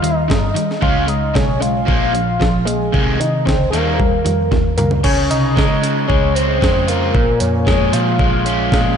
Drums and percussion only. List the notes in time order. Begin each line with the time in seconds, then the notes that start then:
0.04 closed hi-hat
0.30 kick, snare
0.56 closed hi-hat
0.71 snare
0.82 kick
1.08 closed hi-hat
1.35 kick, snare
1.62 closed hi-hat
1.88 kick
2.15 closed hi-hat
2.41 kick, snare
2.67 closed hi-hat
2.94 kick
3.21 closed hi-hat
3.47 kick, snare
3.73 closed hi-hat
4.00 kick
4.26 closed hi-hat
4.52 kick, snare
4.78 closed hi-hat, mid tom
4.91 floor tom
5.04 kick, crash
5.31 closed hi-hat
5.57 kick, snare
5.84 closed hi-hat
6.10 kick
6.36 closed hi-hat
6.62 kick, snare
6.88 closed hi-hat
7.15 kick
7.40 closed hi-hat
7.67 kick, snare
7.93 closed hi-hat
8.19 kick
8.46 closed hi-hat
8.72 kick, snare